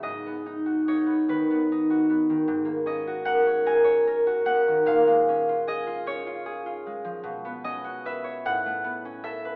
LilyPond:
\new Staff \with { instrumentName = "Harp" } { \time 6/8 \key gis \phrygian \tempo 4. = 50 << { <dis'' fis''>4 cis''8 b'4.~ | b'8 dis''8 fis''8 gis''4 fis''8 | eis''4 dis''8 cis''4.~ | cis''8 dis''8 e''8 fis''4 e''8 | } \\ { <gis, b gis' b'>16 b16 dis'16 fis'16 dis'16 b16 dis16 b16 dis'16 fis'16 b16 dis16 | gis,16 ais16 cis'16 fis'16 ais'16 cis''16 ais'16 cis''16 ais'16 fis'16 ais16 dis16 | ais,16 gis16 cis'16 eis'16 gis'16 eis'16 cis'16 eis'16 gis'16 eis'16 gis16 eis16 | b,16 b16 cis'16 fis'16 b'16 cis''16 a,16 a16 b16 cis'16 a'16 b'16 | } >> }